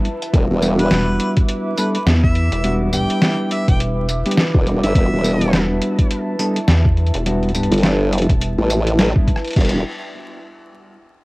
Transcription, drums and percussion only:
0.05 closed hi-hat
0.22 closed hi-hat
0.34 kick, closed hi-hat
0.62 tambourine
0.79 closed hi-hat
0.91 snare, closed hi-hat
1.20 closed hi-hat
1.37 kick, closed hi-hat
1.49 closed hi-hat
1.77 closed hi-hat, tambourine
1.95 closed hi-hat
2.07 snare, closed hi-hat
2.24 kick
2.35 closed hi-hat
2.52 closed hi-hat
2.64 closed hi-hat
2.93 tambourine
3.10 closed hi-hat
3.22 snare, closed hi-hat
3.51 closed hi-hat
3.68 kick, closed hi-hat
3.80 closed hi-hat
4.09 closed hi-hat, tambourine
4.26 closed hi-hat
4.31 closed hi-hat
4.38 snare
4.55 kick
4.67 closed hi-hat
4.84 closed hi-hat
4.95 kick, closed hi-hat
5.24 tambourine
5.41 closed hi-hat
5.53 snare, closed hi-hat
5.82 closed hi-hat
5.99 kick, closed hi-hat
6.11 closed hi-hat
6.39 closed hi-hat, tambourine
6.56 closed hi-hat
6.68 snare, closed hi-hat
6.85 kick
6.97 closed hi-hat
7.07 closed hi-hat
7.14 closed hi-hat
7.16 closed hi-hat
7.26 closed hi-hat
7.43 closed hi-hat
7.49 closed hi-hat
7.55 closed hi-hat, tambourine
7.63 closed hi-hat
7.72 closed hi-hat
7.74 closed hi-hat
7.78 closed hi-hat
7.80 closed hi-hat
7.81 snare, closed hi-hat
7.83 closed hi-hat
8.13 closed hi-hat
8.18 closed hi-hat
8.22 closed hi-hat
8.29 kick, closed hi-hat
8.41 closed hi-hat
8.70 closed hi-hat, tambourine
8.87 closed hi-hat
8.99 snare, closed hi-hat
9.16 kick
9.28 kick, closed hi-hat
9.36 cross-stick
9.45 closed hi-hat
9.48 closed hi-hat
9.51 closed hi-hat
9.53 closed hi-hat
9.56 kick, closed hi-hat, crash
9.61 closed hi-hat
9.65 closed hi-hat
9.69 closed hi-hat

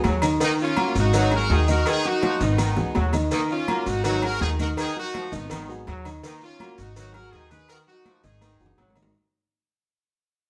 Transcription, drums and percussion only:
0.04 cowbell, high conga, low timbale, low agogo, maracas
0.22 cowbell, low agogo, maracas
0.40 cowbell, high conga, low agogo, maracas
0.59 high conga, maracas
0.77 cowbell, high conga, low timbale, low agogo, maracas
0.95 cowbell, maracas
1.13 cowbell, high conga, low agogo, maracas
1.31 high conga, low agogo, maracas
1.50 cowbell, high conga, low timbale, maracas
1.68 high conga, low agogo, maracas
1.86 cowbell, high conga, low agogo, maracas
2.05 high conga, maracas
2.22 cowbell, high bongo, high conga, low timbale, low agogo, maracas
2.41 cowbell, high conga, maracas
2.58 cowbell, low bongo, high conga, low conga, low agogo, maracas
2.77 low bongo, high conga, low conga, maracas
2.95 cowbell, low bongo, high conga, low timbale, low agogo, maracas
3.13 cowbell, low bongo, high conga, low agogo, maracas
3.31 cowbell, high conga, low agogo, maracas
3.50 high conga, maracas
3.68 cowbell, high conga, low timbale, low agogo, maracas
3.86 cowbell, maracas
4.04 cowbell, high conga, low agogo, maracas
4.22 high conga, low agogo, maracas
4.41 cowbell, high conga, low timbale, maracas
4.59 high conga, low agogo, maracas
4.77 cowbell, high conga, low agogo, maracas
4.96 high conga, maracas
5.14 cowbell, high conga, low timbale, low agogo, maracas
5.32 cowbell, high conga, maracas
5.50 cowbell, high conga, low conga, low agogo, maracas
5.70 high conga, maracas
5.87 cowbell, high conga, low timbale, low agogo, maracas
6.05 cowbell, low agogo, maracas
6.23 cowbell, high conga, low agogo, maracas
6.42 high conga, maracas
6.60 cowbell, high conga, low timbale, low agogo, maracas
6.78 cowbell, maracas
6.96 cowbell, high conga, low agogo, maracas
7.14 high conga, low agogo, maracas
7.32 cowbell, high conga, low timbale, maracas
7.51 high conga, low agogo, maracas
7.69 cowbell, high conga, low agogo, maracas
7.88 high conga, maracas
8.06 cowbell, high conga, low timbale, low agogo, maracas
8.24 cowbell, high conga, maracas
8.41 cowbell, high conga, high timbale, low agogo, maracas
8.60 high bongo, maracas
8.65 low conga, high timbale
8.78 cowbell, low bongo, low conga, low timbale, low agogo, maracas
8.90 low timbale
8.96 cowbell, low bongo, low agogo, maracas
9.02 low conga, low timbale

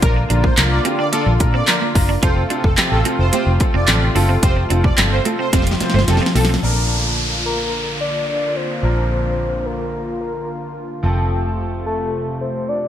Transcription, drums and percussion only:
0.02 kick, closed hi-hat
0.30 closed hi-hat
0.44 kick
0.57 snare, clap, closed hi-hat
0.85 closed hi-hat
1.13 closed hi-hat
1.40 kick, closed hi-hat
1.67 snare, clap, closed hi-hat
1.95 kick, open hi-hat
2.23 kick, closed hi-hat
2.50 closed hi-hat
2.64 kick
2.78 snare, clap, closed hi-hat
3.05 closed hi-hat
3.33 closed hi-hat
3.60 kick, closed hi-hat
3.88 snare, clap, closed hi-hat
4.16 open hi-hat
4.43 kick, closed hi-hat
4.70 closed hi-hat
4.84 kick
4.98 snare, clap, closed hi-hat
5.25 closed hi-hat
5.53 kick, snare, closed hi-hat
5.62 snare
5.67 closed hi-hat
5.71 snare
5.80 snare, closed hi-hat
5.90 snare
5.99 snare
6.08 snare, closed hi-hat
6.17 snare
6.26 snare
6.36 snare, open hi-hat
6.45 snare
6.54 snare

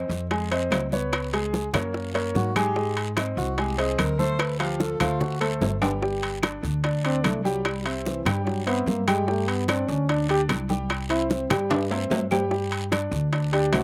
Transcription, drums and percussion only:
0.10 high bongo, high conga, short guiro
0.31 high bongo, high conga, high timbale, long guiro
0.51 high bongo, high conga, high timbale
0.72 high bongo, low bongo, high conga, high timbale, low timbale, short guiro, claves
0.92 high bongo, high conga, short guiro
1.13 high bongo, high conga, high timbale, long guiro, claves
1.33 high conga, high timbale
1.54 high bongo, high conga, short guiro
1.74 high bongo, high conga, low conga, high timbale, short guiro, claves
1.94 high bongo, high conga, long guiro
2.15 high bongo, high conga, high timbale
2.35 high bongo, low bongo, high conga, short guiro
2.55 high bongo, high conga, high timbale, short guiro, claves
2.76 high bongo, high conga, long guiro
2.97 high conga, high timbale
3.17 high bongo, high conga, high timbale, short guiro, claves
3.38 high bongo, high conga, short guiro
3.58 high bongo, high conga, high timbale, long guiro
3.79 high bongo, high conga, high timbale
3.98 high bongo, low bongo, high conga, high timbale, short guiro, claves
4.19 high bongo, high conga, short guiro
4.39 high bongo, high conga, high timbale, long guiro, claves
4.60 high conga, high timbale
4.80 high bongo, high conga, short guiro
5.00 high bongo, high conga, low conga, high timbale, short guiro, claves
5.21 high bongo, high conga, low conga, long guiro
5.41 high bongo, high conga, high timbale
5.61 high bongo, low bongo, high conga, low timbale, short guiro
5.82 high bongo, high conga, high timbale, short guiro, claves
6.02 high bongo, high conga, long guiro
6.23 high conga, high timbale
6.43 high bongo, high conga, high timbale, short guiro, claves
6.63 high bongo, high conga, short guiro
6.84 high bongo, high conga, high timbale, long guiro
7.04 high bongo, high conga, high timbale
7.24 high bongo, low bongo, high conga, high timbale, short guiro, claves
7.45 high bongo, high conga, short guiro
7.65 high bongo, high conga, high timbale, long guiro, claves
7.86 high conga, high timbale
8.06 high bongo, high conga, short guiro
8.26 high bongo, high conga, low conga, high timbale, short guiro, claves
8.47 high bongo, high conga, long guiro
8.67 high bongo, high conga, high timbale
8.87 high bongo, low bongo, high conga, short guiro
9.08 high bongo, high conga, high timbale, short guiro, claves
9.28 high bongo, high conga, long guiro
9.48 high conga, high timbale
9.68 high bongo, high conga, high timbale, short guiro, claves
9.89 high bongo, high conga, short guiro
10.09 high bongo, high timbale, long guiro
10.29 high bongo, high conga, high timbale
10.49 high bongo, low bongo, high conga, high timbale, short guiro, claves
10.69 high bongo, high conga, short guiro
10.90 high bongo, high conga, high timbale, long guiro, claves
11.10 high conga, high timbale
11.30 high bongo, high conga, short guiro
11.50 high conga, low conga, high timbale, short guiro, claves
11.70 high bongo, high conga, low conga, high timbale, long guiro
11.91 high bongo, high conga, low timbale
12.11 high bongo, low bongo, high conga, low timbale, short guiro
12.31 high bongo, high conga, low timbale, short guiro, claves
12.51 high bongo, high conga, long guiro
12.72 high conga, high timbale
12.92 high bongo, high conga, high timbale, short guiro, claves
13.12 high bongo, high conga, short guiro
13.33 high bongo, high conga, high timbale, long guiro
13.53 high bongo, high conga, high timbale
13.73 high bongo, low bongo, high conga, high timbale, low timbale, short guiro, claves

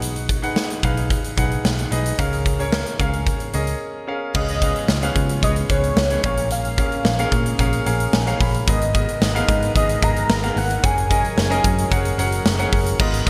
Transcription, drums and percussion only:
0.02 closed hi-hat
0.16 closed hi-hat
0.29 kick, closed hi-hat
0.43 closed hi-hat
0.56 snare
0.70 closed hi-hat
0.83 kick, closed hi-hat
0.97 closed hi-hat
1.10 kick, closed hi-hat
1.24 closed hi-hat
1.38 kick, closed hi-hat
1.51 closed hi-hat
1.65 snare
1.79 closed hi-hat
1.92 closed hi-hat
2.06 closed hi-hat
2.19 kick, closed hi-hat
2.33 closed hi-hat
2.46 kick, closed hi-hat
2.60 closed hi-hat
2.72 snare
2.86 closed hi-hat
3.00 kick, closed hi-hat
3.13 closed hi-hat
3.27 kick, closed hi-hat
3.40 closed hi-hat
3.53 closed hi-hat
3.67 closed hi-hat
4.34 kick, crash
4.48 closed hi-hat
4.62 kick, closed hi-hat
4.76 closed hi-hat
4.88 snare
5.02 closed hi-hat
5.16 kick, closed hi-hat
5.29 closed hi-hat
5.43 kick, closed hi-hat
5.56 closed hi-hat
5.69 kick, closed hi-hat
5.83 closed hi-hat
5.97 snare
6.10 closed hi-hat
6.23 kick, closed hi-hat
6.37 closed hi-hat
6.50 closed hi-hat
6.65 closed hi-hat
6.78 kick, closed hi-hat
6.92 closed hi-hat
7.05 snare
7.19 closed hi-hat
7.32 kick, closed hi-hat
7.46 closed hi-hat
7.59 kick, closed hi-hat
7.73 closed hi-hat
7.86 closed hi-hat
8.00 closed hi-hat
8.13 snare
8.27 closed hi-hat
8.40 kick, open hi-hat
8.54 closed hi-hat
8.68 kick, closed hi-hat
8.81 closed hi-hat
8.95 kick, closed hi-hat
9.08 closed hi-hat
9.22 snare
9.36 closed hi-hat
9.49 kick, closed hi-hat
9.62 closed hi-hat
9.76 kick, closed hi-hat
9.89 closed hi-hat
10.02 kick, closed hi-hat
10.16 closed hi-hat
10.30 snare
10.43 closed hi-hat
10.57 open hi-hat
10.70 closed hi-hat
10.84 kick, closed hi-hat
10.98 closed hi-hat
11.11 kick, closed hi-hat
11.24 closed hi-hat
11.38 snare
11.51 closed hi-hat
11.64 kick, closed hi-hat
11.78 closed hi-hat
11.92 kick, closed hi-hat
12.05 closed hi-hat
12.19 closed hi-hat
12.32 closed hi-hat
12.46 snare
12.59 closed hi-hat
12.73 kick, open hi-hat
12.86 closed hi-hat
13.00 kick, crash
13.14 closed hi-hat
13.27 kick

